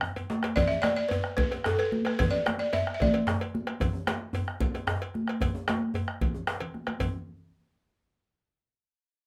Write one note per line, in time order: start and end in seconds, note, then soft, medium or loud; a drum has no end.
0.01 bombo rim loud
0.01 djembe bass medium
0.16 cowbell medium
0.16 djembe bass medium
0.30 djembe slap medium
0.30 high conga medium
0.43 bombo rim medium
0.43 cowbell medium
0.43 djembe slap medium
0.56 0.70 D5 loud
0.56 bombo low loud
0.56 cowbell medium
0.56 djembe bass medium
0.56 low conga medium
0.68 0.74 E5 medium
0.68 djembe tone medium
0.82 0.95 D5 loud
0.82 bombo rim loud
0.82 cowbell medium
0.82 djembe slap medium
0.82 high conga medium
0.96 1.11 D5 medium
1.09 1.35 B4 loud
1.09 cowbell medium
1.09 djembe bass medium
1.24 bombo rim medium
1.37 1.66 B4 loud
1.37 bombo low loud
1.37 cowbell medium
1.37 high conga medium
1.37 low conga medium
1.51 bombo rim soft
1.51 cowbell medium
1.51 djembe tone medium
1.64 1.79 A4 medium
1.64 bombo rim medium
1.64 djembe slap medium
1.64 djembe bass medium
1.79 2.06 B4 medium
1.79 cowbell medium
1.92 bombo rim soft
1.92 djembe slap soft
1.92 high conga medium
2.05 2.18 B4 medium
2.05 bombo rim medium
2.05 cowbell medium
2.05 djembe slap soft
2.19 2.33 B4 loud
2.19 bombo low loud
2.19 cowbell medium
2.19 low conga medium
2.19 djembe bass loud
2.31 2.58 D5 medium
2.31 djembe tone medium
2.46 bombo rim loud
2.46 cowbell medium
2.46 djembe slap medium
2.46 high conga medium
2.59 2.72 D5 medium
2.73 2.93 E5 loud
2.73 cowbell medium
2.73 djembe bass medium
2.87 bombo rim medium
2.94 3.00 E5 medium
3.00 3.64 D5 loud
3.00 bombo low loud
3.00 cowbell medium
3.00 high conga medium
3.00 low conga medium
3.14 bombo rim soft
3.14 cowbell medium
3.27 bombo rim loud
3.27 djembe slap medium
3.27 djembe bass loud
3.41 cowbell medium
3.54 bombo rim soft
3.54 djembe slap soft
3.54 high conga medium
3.67 bombo rim medium
3.67 cowbell medium
3.67 djembe slap soft
3.80 bombo low loud
3.80 cowbell medium
3.80 djembe bass loud
3.80 low conga medium
3.93 djembe tone medium
4.07 bombo rim loud
4.07 cowbell medium
4.07 djembe slap medium
4.07 high conga medium
4.33 cowbell medium
4.33 djembe bass medium
4.48 bombo rim medium
4.60 bombo low loud
4.60 cowbell soft
4.60 high conga medium
4.60 low conga medium
4.74 bombo rim soft
4.74 cowbell medium
4.74 djembe tone medium
4.87 bombo rim loud
4.87 djembe slap medium
4.87 djembe bass medium
5.02 cowbell medium
5.14 bombo rim soft
5.14 djembe slap soft
5.14 high conga medium
5.28 bombo rim medium
5.28 cowbell medium
5.28 djembe slap soft
5.41 bombo low loud
5.41 cowbell medium
5.41 djembe bass medium
5.41 low conga medium
5.55 djembe tone medium
5.68 bombo rim loud
5.68 cowbell medium
5.68 djembe slap medium
5.68 high conga medium
5.94 cowbell medium
5.94 djembe slap soft
5.94 djembe bass medium
6.08 bombo rim medium
6.21 bombo low loud
6.21 cowbell soft
6.21 high conga medium
6.21 low conga medium
6.34 djembe slap soft
6.34 djembe tone medium
6.34 high conga soft
6.47 bombo rim loud
6.47 djembe slap medium
6.60 cowbell medium
6.60 low conga soft
6.74 bombo rim soft
6.74 high conga medium
6.86 bombo rim medium
6.86 cowbell medium
6.86 djembe slap soft
6.86 high conga medium
7.00 bombo low medium
7.00 cowbell medium
7.00 djembe bass loud
7.00 low conga medium